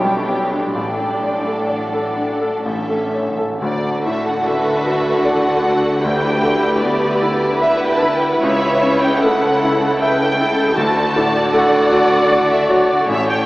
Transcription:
Already playing: grand piano B1, double bass section B1, cello section B2, viola section D4, violin section G4 C#5, flute section G5
0.05 grand piano G3
0.29 grand piano G4
0.51 grand piano D4
0.74 grand piano A1, double bass section A1, cello section A2, timpani A2, viola section D4, violin section A4 D5, flute section G5
1.00 grand piano A3
1.23 grand piano D5
1.47 grand piano A4
1.69 grand piano D5, flute section F#5
1.93 grand piano A4
2.17 grand piano D4
2.41 grand piano A4
2.65 grand piano A1, timpani A2, viola section C#4, violin section A4 E5
2.90 grand piano A3
3.02 timpani A2
3.11 timpani A2, grand piano C#5
3.20 timpani A2
3.30 timpani A2
3.39 timpani A2, grand piano A4
3.47 timpani A2
3.61 double bass section D2, grand piano D2, timpani D3, cello section D3, violin section F#4 A4 D5
4.05 grand piano A2, violin section E5
4.26 violin section F#5
4.46 grand piano A3, viola section B4, violin section E5
4.86 grand piano F#4
5.23 viola section A4, grand piano D5, violin section F#5
5.64 grand piano F#4
6.02 grand piano D2, violin section E4 B4 G5, viola section G4
6.43 grand piano D3
6.81 grand piano B3, violin section D5
7.22 grand piano E4
7.62 viola section B4, grand piano E5, violin section E5
7.77 violin section F#5
7.86 violin section G5
7.94 violin section A5
8.01 grand piano E4, violin section B5
8.08 violin section A5
8.15 violin section G5
8.23 violin section E5
8.32 violin section F#5
8.40 double bass section C#2, grand piano C#2, cello section C#3, viola section C#5, violin section E5
8.83 grand piano C#3
9.02 violin section G5
9.20 grand piano A3, violin section A4 F#5, viola section B4
9.61 grand piano E4, viola section A4
10.01 viola section B4, grand piano E5, violin section G5
10.39 grand piano E4, viola section A4
10.77 double bass section D2, grand piano D2, cello section D3, timpani D3, viola section F#4, violin section F#4 A5
11.15 grand piano A2, viola section D5
11.53 grand piano A3, violin section F#5
11.92 grand piano F#4
12.32 grand piano D5
12.51 violin section E5
12.70 grand piano F#4, violin section C#5
12.91 violin section D5
13.08 double bass section A1, grand piano A1, cello section A2, violin section C#4 A4 E5, viola section C#5
13.29 violin section G5

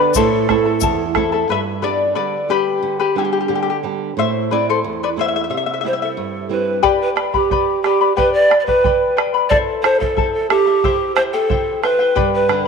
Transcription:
Already playing: nylon-string guitar D3, pan flute B4
0.00 charango B4 D5 B5
0.14 nylon-string guitar A2, charango E4 A4 C5 E5 A5, pan flute A4, bombo low, shaker
0.49 nylon-string guitar A3 C4 E4, charango E4 A4 E5 A5, bombo rim, bombo low
0.65 charango E4 A4 A5
0.81 nylon-string guitar E2, charango E4 A4 E5 A5, bombo low, shaker
1.15 nylon-string guitar A3 C4 E4, charango E4 A4 E5 A5, bombo rim, bombo low
1.32 charango E4 A4 A5
1.49 nylon-string guitar G2, charango B4 E5
1.82 nylon-string guitar G3 B3 D4, charango B4 D5
2.15 nylon-string guitar D3, charango B4 D5
2.49 nylon-string guitar G3 B3 D4, charango G4 B4
2.83 nylon-string guitar D3
3.00 charango G4 B4
3.15 nylon-string guitar G3 B3 D4, charango E4 G4
3.25 charango G4
3.33 charango G4
3.41 charango G4
3.48 nylon-string guitar D3, charango G4
3.55 charango G4
3.63 charango G4
3.70 charango G4
3.83 nylon-string guitar G3 B3 D4
4.17 nylon-string guitar A2, charango C5 E5
4.51 nylon-string guitar A3 C4 E4, charango B4 D5
4.69 charango A4 C5
4.84 nylon-string guitar E2
5.03 charango B4 D5
5.16 nylon-string guitar A3 C4 E4, charango C5
5.21 charango E5
5.28 charango E5
5.36 charango E5
5.44 charango E5
5.50 nylon-string guitar C3, charango E5
5.57 charango E5
5.66 charango E5
5.74 charango E5
5.81 nylon-string guitar G3 C4 E4, charango E5
5.86 pan flute C5, charango E5
5.93 charango E5
6.02 pan flute A4, charango E5
6.17 nylon-string guitar G2
6.49 nylon-string guitar G3 C4 E4, pan flute B4
6.83 charango G4 B4 D5 G5 B5, bombo low
7.02 pan flute B4
7.15 charango B4 D5 G5 B5, bombo rim
7.33 pan flute G4, charango B4 D5 B5, bombo low
7.51 charango B4 D5 G5 B5, bombo low
7.82 pan flute G4, charango B4 D5 G5 B5, bombo rim
8.01 charango B4 D5 B5
8.16 charango G4 B4 D5 G5 B5, pan flute B4, bombo low
8.33 pan flute D5
8.50 charango B4 D5 G5 B5, bombo rim
8.60 pan flute D5
8.66 pan flute B4, charango B4 D5 B5, bombo low
8.84 charango B4 D5 G5 B5, bombo low
9.17 charango B4 D5 G5 B5, bombo rim
9.34 charango B4 D5 B5
9.49 charango E4 A4 C5 E5 A5, pan flute D5, bombo low
9.83 charango E4 A4 E5 A5, pan flute C5, bombo rim
10.00 charango E4 A4 A5, pan flute A4, bombo low
10.17 charango E4 A4 E5 A5, bombo low
10.33 pan flute A4
10.50 charango E4 A4 E5 A5, pan flute G4, bombo rim
10.66 charango E4 A4 A5
10.84 charango E4 G4 C5 E5 G5, bombo low
11.15 charango E4 C5 E5 G5, pan flute C5, bombo rim
11.33 charango E4 C5 G5, pan flute A4
11.49 charango E4 C5 E5 G5, bombo low
11.83 charango E4 C5 E5 G5, pan flute B4, bombo rim
11.99 charango E4 C5 G5
12.15 nylon-string guitar G2, charango G4 B4 D5 G5 B5, bombo low
12.34 pan flute B4
12.49 nylon-string guitar D3, charango B4 D5 G5 B5, bombo rim

